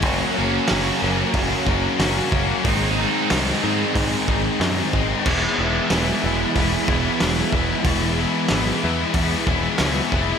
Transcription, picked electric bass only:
X:1
M:4/4
L:1/8
Q:1/4=92
K:Elyd
V:1 name="Picked electric bass" clef=bass
F,,, F,,, F,,, F,,, F,,, F,,, F,,, F,,, | G,,,2 ^B,,, G,, G,, G,,, F,, G,,, | E,,, E,,, E,,, E,,, E,,, E,,, E,,, E,,, | E,,,2 G,,, E,, E,, E,,, C,, =F,,, |]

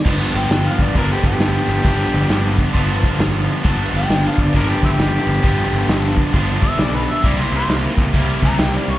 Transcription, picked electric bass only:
X:1
M:4/4
L:1/8
Q:"Swing" 1/4=134
K:Gmix
V:1 name="Picked electric bass" clef=bass
G,,, G,,, G,,, G,,, G,,, G,,, G,,, G,,, | G,,, G,,, G,,,2 G,,,2 G,,,2 | G,,, G,,, G,,, G,,, G,,, G,,, G,,, G,,, | G,,, G,,, G,,,2 G,,,2 B,,,2 |
C,, C,, C,, C,, C,, C,, C,, C,, |]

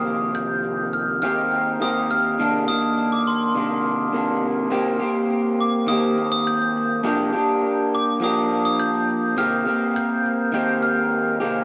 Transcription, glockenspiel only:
X:1
M:4/4
L:1/16
Q:1/4=103
K:Cm
V:1 name="Glockenspiel"
e'2 g'4 f'2 f'4 e'2 f'2- | f'2 e'3 d' c'8 z2 | z6 d'2 e'3 e' g'3 z | z6 d'2 e'3 e' g'3 z |
f'4 g'4 g'2 f'4 z2 |]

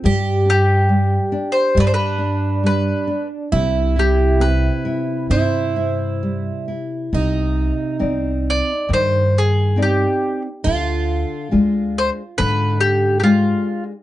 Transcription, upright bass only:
X:1
M:4/4
L:1/8
Q:1/4=69
K:C
V:1 name="Upright bass" clef=bass
G,,4 G,,4 | C,,4 G,,4 | [K:Cm] C,,2 C,,2 G,,4 | D,,2 D,,2 A,,4 |]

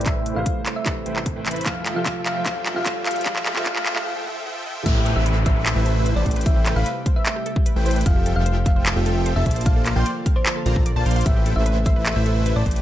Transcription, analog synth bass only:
X:1
M:4/4
L:1/16
Q:1/4=150
K:Am
V:1 name="Analog synth bass" clef=bass
A,,,3 A,,, z6 A,,,3 A,,, A,,,2 | F,,,3 F,,,4- F,,, F,,,3 F,,,4- F,,, | _B,,,3 B,,, B,,,3 B,,, z8 | A,,,3 A,,,6 A,,,4 A,,, A,,,2- |
A,,,3 A,,, z8 z A,,,3 | F,,,3 F,,,6 F,,,4 F,,, _B,,,2- | _B,,,3 B,,, z6 B,,,3 B,,, B,,,2 | A,,,3 A,,,6 A,,,4 A,,, A,,,2 |]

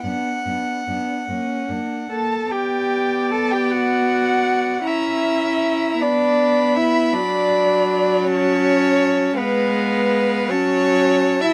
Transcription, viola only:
X:1
M:6/8
L:1/8
Q:3/8=53
K:Bm
V:1 name="Viola"
B, B, B, ^A, A, A, | B,6 | C3 B,3 | F,6 |
_A,3 F,3 |]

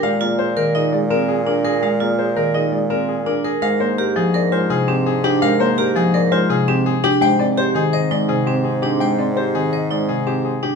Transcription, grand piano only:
X:1
M:5/4
L:1/8
Q:1/4=167
K:Bbmix
V:1 name="Grand piano"
f d c B e d B A B A | f d c B e d B A B A | f c B A d c A G A G | f c B A d c A G A G |
g d c A e d A G A G | g d c A e d A G A G |]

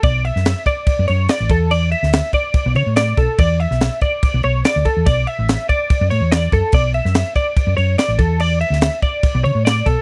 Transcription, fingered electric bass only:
X:1
M:4/4
L:1/16
Q:1/4=144
K:Edor
V:1 name="Fingered electric bass" clef=bass
B,,,3 F,,2 z4 F,, F,,2 z A,,, E,,2- | E,,3 D,,2 z4 B,,, C, A,,3 B,,, z | E,,3 B,,,2 z4 B,,, B,,,2 z D,, z E,, | B,,,2 z A,,,2 z4 F,, A,, E,,3 F,, z |
B,,,3 F,,2 z4 F,, F,,2 z A,,, E,,2- | E,,3 D,,2 z4 B,,, C, A,,3 B,,, z |]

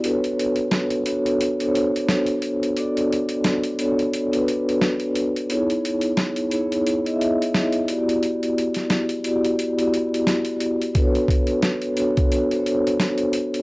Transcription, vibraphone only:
X:1
M:4/4
L:1/16
Q:"Swing 16ths" 1/4=88
K:Bm
V:1 name="Vibraphone"
[B,DFABc]4- [B,DFABc] z [B,DFAc]3 [B,DFA=c^c]6 z | [B,DFAd]4- [B,DFAd] z [B,DFAc]3 [B,DFAB]6 z | [B,^DE^Gc]4- [B,DEGc] z [B,DEGc]3 [B,EG^de]4- [B,EGde] [B,EF=G=d]2- | [B,EFGd]4- [B,EFGd] z [B,EFGd]3 [B,EFGd]6 z |
[B,DFABc]4- [B,DFABc] z [B,DFAc]3 [B,DFA=c^c]6 z |]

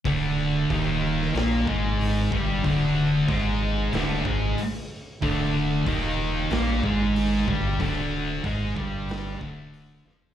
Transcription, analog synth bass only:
X:1
M:4/4
L:1/8
Q:1/4=93
K:Cmix
V:1 name="Analog synth bass" clef=bass
D,,,2 _E,,,2 B,,, ^G,,,2 =G,,, | D,,,2 ^G,,,2 D,,, G,,, z2 | D,,,2 _E,,,2 B,,, ^G,,,2 =G,,, | D,,,2 ^G,,, =G,,,2 D,,,2 F,,, |]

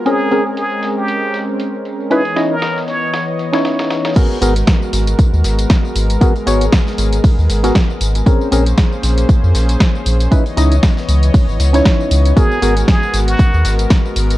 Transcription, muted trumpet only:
X:1
M:4/4
L:1/16
Q:"Swing 16ths" 1/4=117
K:G#m
V:1 name="Muted trumpet"
G4 G3 =G4 z4 z | G3 A3 c3 z6 z | z16 | z16 |
z16 | z16 | G4 G3 F4 z4 z |]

